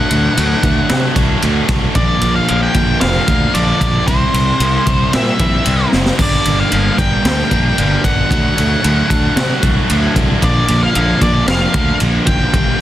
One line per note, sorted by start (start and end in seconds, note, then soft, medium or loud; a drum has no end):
0.00 0.34 D3 medium
0.00 0.10 F#3 medium
0.00 1.64 F#5 medium
0.09 0.27 D2 medium
0.09 0.36 F#3 medium
0.09 0.36 A3 medium
0.09 0.38 D4 medium
0.09 ride medium
0.36 0.54 D2 loud
0.36 0.89 D3 loud
0.36 0.64 F#3 medium
0.36 0.63 A3 medium
0.36 0.62 D4 loud
0.36 ride loud
0.63 0.80 D2 medium
0.63 1.16 F#3 medium
0.63 1.15 A3 medium
0.63 1.14 D4 medium
0.63 kick medium
0.63 ride medium
0.89 1.07 C3 medium
0.89 snare loud
0.89 ride loud
1.15 1.33 C2 medium
1.15 1.42 F#3 medium
1.15 1.43 A3 medium
1.15 1.44 D4 medium
1.15 kick medium
1.15 ride medium
1.42 1.60 D2 loud
1.42 1.94 D3 medium
1.42 1.95 F#3 medium
1.42 1.95 A3 medium
1.42 1.95 D4 medium
1.42 ride loud
1.68 1.85 C2 loud
1.68 kick medium
1.68 snare soft
1.68 ride medium
1.95 2.12 A#1 loud
1.95 2.47 A#2 loud
1.95 2.48 D3 medium
1.95 2.23 F3 loud
1.95 2.22 A#3 loud
1.95 2.21 D4 loud
1.95 2.33 D5 loud
1.95 kick loud
1.95 ride loud
2.21 2.39 A#1 medium
2.21 2.49 F3 medium
2.21 2.49 A#3 medium
2.21 2.50 D4 medium
2.21 ride medium
2.35 2.48 F5 loud
2.48 2.67 A#1 loud
2.48 3.02 A#2 medium
2.48 3.02 D3 loud
2.48 2.76 F3 loud
2.48 2.75 A#3 loud
2.48 2.74 D4 medium
2.48 2.61 F5 loud
2.48 ride loud
2.62 3.00 G5 loud
2.74 2.92 A#1 medium
2.74 3.29 F3 medium
2.74 3.28 A#3 medium
2.74 3.27 D4 medium
2.74 kick medium
2.74 ride medium
3.01 3.19 F1 loud
3.01 3.56 F5 loud
3.01 snare loud
3.01 ride loud
3.28 3.45 D2 loud
3.28 3.55 F3 medium
3.28 3.55 A#3 medium
3.28 3.56 D4 medium
3.28 kick medium
3.28 ride medium
3.55 3.71 A#1 medium
3.55 4.06 D3 medium
3.55 4.07 F3 medium
3.55 4.07 A#3 medium
3.55 4.07 D4 medium
3.55 4.07 D5 loud
3.55 ride loud
3.81 3.98 A#1 loud
3.81 kick medium
3.81 ride medium
4.08 4.24 C2 loud
4.08 4.59 C3 loud
4.08 4.36 G3 medium
4.08 4.33 C4 loud
4.08 4.32 E4 loud
4.08 5.14 C5 loud
4.08 kick loud
4.08 ride loud
4.34 4.50 C2 medium
4.34 4.61 G3 medium
4.34 4.61 C4 medium
4.34 4.62 E4 medium
4.34 ride medium
4.60 4.77 C2 loud
4.60 5.13 C3 loud
4.60 4.89 G3 loud
4.60 4.87 C4 loud
4.60 4.85 E4 medium
4.60 ride loud
4.86 5.04 C2 medium
4.86 5.40 G3 medium
4.86 5.39 C4 medium
4.86 5.38 E4 medium
4.86 kick medium
4.86 ride medium
5.13 5.31 A#2 loud
5.13 5.89 E5 medium
5.13 snare loud
5.13 ride loud
5.39 5.56 A#1 loud
5.39 5.65 G3 medium
5.39 5.66 C4 medium
5.39 5.66 E4 medium
5.39 kick medium
5.39 ride medium
5.65 5.83 C2 loud
5.65 6.17 C3 medium
5.65 6.18 G3 medium
5.65 6.18 C4 medium
5.65 6.18 E4 medium
5.65 ride loud
5.92 6.10 F#1 medium
5.92 snare medium
6.06 snare loud
6.18 6.36 G1 loud
6.18 6.70 G2 loud
6.18 6.70 D3 medium
6.18 6.46 G3 loud
6.18 6.45 A#3 loud
6.18 6.44 D4 medium
6.18 kick loud
6.18 crash loud
6.22 6.61 D5 medium
6.45 6.62 G1 medium
6.45 6.71 G3 medium
6.45 6.72 A#3 medium
6.45 6.73 D4 medium
6.45 ride medium
6.60 6.98 F5 loud
6.71 6.89 G1 loud
6.71 7.24 G2 medium
6.71 7.25 D3 medium
6.71 6.99 G3 loud
6.71 6.97 A#3 loud
6.71 6.97 D4 medium
6.71 ride loud
6.97 7.15 G1 medium
6.97 7.51 G3 medium
6.97 7.50 A#3 medium
6.97 7.50 D4 medium
6.97 8.04 G5 loud
6.97 kick medium
6.97 ride medium
7.25 7.41 D2 loud
7.25 snare loud
7.25 ride loud
7.50 7.68 A#1 loud
7.50 7.76 G3 medium
7.50 7.77 A#3 medium
7.50 7.79 D4 medium
7.50 kick medium
7.50 ride medium
7.76 7.95 G1 medium
7.76 8.28 D3 medium
7.76 8.29 G3 medium
7.76 8.29 A#3 medium
7.76 8.32 D4 medium
7.76 ride loud
8.04 8.21 G1 medium
8.04 10.12 F#5 loud
8.04 kick medium
8.04 ride medium
8.30 8.47 D2 loud
8.30 8.81 D3 medium
8.30 8.57 F#3 medium
8.30 8.56 A3 loud
8.30 8.56 D4 medium
8.30 kick loud
8.30 ride loud
8.56 8.75 D2 medium
8.56 8.82 F#3 medium
8.56 8.83 A3 medium
8.56 8.84 D4 medium
8.56 ride medium
8.82 9.01 D2 loud
8.82 9.36 D3 medium
8.82 9.10 F#3 loud
8.82 9.09 A3 medium
8.82 9.08 D4 loud
8.82 ride loud
9.09 9.27 D2 loud
9.09 9.63 F#3 medium
9.09 9.62 A3 medium
9.09 9.61 D4 medium
9.09 kick medium
9.09 ride medium
9.36 9.53 C3 loud
9.36 snare loud
9.36 ride loud
9.62 9.80 C2 loud
9.62 9.89 F#3 medium
9.62 9.89 A3 medium
9.62 9.91 D4 medium
9.62 kick medium
9.62 ride medium
9.89 10.07 D2 loud
9.89 10.41 D3 medium
9.89 10.41 F#3 medium
9.89 10.41 A3 medium
9.89 10.44 D4 medium
9.89 ride loud
10.16 10.33 C2 loud
10.16 kick medium
10.16 ride medium
10.41 10.59 A#1 loud
10.41 10.93 A#2 loud
10.41 10.94 D3 loud
10.41 10.69 F3 loud
10.41 10.68 A#3 loud
10.41 10.67 D4 loud
10.41 10.80 D5 loud
10.41 kick loud
10.41 ride loud
10.68 10.86 A#1 medium
10.68 10.94 F3 medium
10.68 10.96 A#3 medium
10.68 10.96 D4 medium
10.68 ride medium
10.83 11.22 F5 loud
10.94 11.12 A#1 loud
10.94 11.48 A#2 medium
10.94 11.48 D3 loud
10.94 11.22 F3 loud
10.94 11.21 A#3 loud
10.94 11.20 D4 loud
10.94 ride loud
11.21 11.38 A#1 medium
11.21 11.76 F3 medium
11.21 11.75 A#3 medium
11.21 11.74 D4 medium
11.21 11.48 D5 medium
11.21 kick medium
11.21 ride medium
11.48 11.64 F1 loud
11.48 11.97 F5 loud
11.48 snare loud
11.48 ride loud
11.74 11.91 D2 medium
11.74 12.01 F3 medium
11.74 12.02 A#3 medium
11.74 12.03 D4 medium
11.74 kick medium
11.74 ride medium
12.00 12.18 A#1 loud
12.00 12.52 D3 medium
12.00 12.53 F3 medium
12.00 12.55 A#3 medium
12.00 12.55 D4 medium
12.00 ride loud
12.26 12.44 F#1 loud
12.26 12.81 G5 loud
12.26 kick medium
12.26 ride medium
12.53 12.71 G1 medium
12.53 12.81 G2 loud
12.53 12.81 D3 medium
12.53 12.81 G3 loud
12.53 12.81 A#3 medium
12.53 12.79 D4 loud
12.53 kick loud
12.53 ride loud